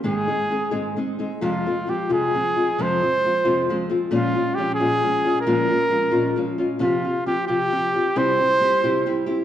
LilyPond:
<<
  \new Staff \with { instrumentName = "Trumpet" } { \time 6/8 \key aes \major \tempo 4. = 89 aes'2 r4 | \key f \minor f'4 g'8 aes'4. | c''2~ c''8 r8 | f'4 g'8 aes'4. |
bes'2~ bes'8 r8 | f'4 g'8 g'4. | c''2~ c''8 r8 | }
  \new Staff \with { instrumentName = "Nylon-string guitar" } { \time 6/8 \key aes \major <aes, ees aes c' ees' aes'>8 <aes c' ees' aes'>8 <aes c' ees' aes'>8 <aes, ees aes c' ees' aes'>8 <aes c' ees' aes'>8 <aes c' ees' aes'>8 | \key f \minor <f, c f aes c' f'>8 <f aes c' f'>8 <f aes c' f'>8 <f, c f aes c' f'>8 <f aes c' f'>8 <f aes c' f'>8 | <f, c f aes c' f'>8 <f aes c' f'>8 <f aes c' f'>8 <f, c f aes c' f'>8 <f aes c' f'>8 <f aes c' f'>8 | <bes, f aes des' f'>8 <aes des' f'>8 <f aes des' f'>8 <bes, f aes des' f'>8 <f aes des' f'>8 <aes des' f'>8 |
<bes, f aes des' f'>8 <aes des' f'>8 <f aes des' f'>8 <bes, f aes des' f'>8 <f aes des' f'>8 <aes des' f'>8 | <c f c' f' g'>8 <c' f' g'>8 <f c' f' g'>8 <c f c' f' g'>8 <f c' f' g'>8 <c' f' g'>8 | <c g c' e' g'>8 <c' e' g'>8 <g c' e' g'>8 <c g c' e' g'>8 <g c' e' g'>8 <c' e' g'>8 | }
>>